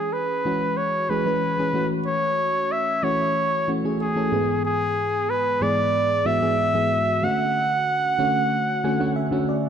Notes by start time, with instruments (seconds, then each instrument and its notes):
Already playing: fm electric piano E3 G#3 C#4 G#4, flugelhorn G#4
0.13 flugelhorn B4
0.45 fm electric piano E3 G#3 C#4 F#4
0.77 flugelhorn C#5
1.09 fm electric piano E3 G#3 C#4 G#4, flugelhorn B4
1.26 fm electric piano E3 G#3 C#4 B4
1.58 fm electric piano E3 G#3 C#4 G#4
1.74 fm electric piano E3 A3 C#4 F#4
2.06 flugelhorn C#5
2.72 flugelhorn E5
3.03 fm electric piano E3 A3 C#4 F#4, flugelhorn C#5
3.68 fm electric piano E3 A3 C#4 F#4
3.84 fm electric piano E3 A3 C#4 G#4
4.01 flugelhorn G#4
4.16 fm electric piano E3 A3 C#4 A4
4.32 fm electric piano G#2 E3 G#3 B3 G#4
4.65 flugelhorn G#4
5.30 flugelhorn B4
5.61 fm electric piano G#2 E3 G#3 B3 G#4, flugelhorn D5
6.25 fm electric piano G#2 E3 G#3 B3 F#4, flugelhorn E5
6.41 fm electric piano G#2 E3 G#3 B3 G#4
6.74 fm electric piano G#2 E3 G#3 B3 G#4
7.22 fm electric piano D3 A3 C#4 F#4, flugelhorn F#5
8.18 fm electric piano D3 A3 C#4 F#4
8.84 fm electric piano D3 A3 C#4 F#4 G#5
8.99 fm electric piano D3 A3 C#4 F#4 F#5
9.16 fm electric piano E5
9.31 fm electric piano D3 A3 C#4 F#4
9.49 fm electric piano D5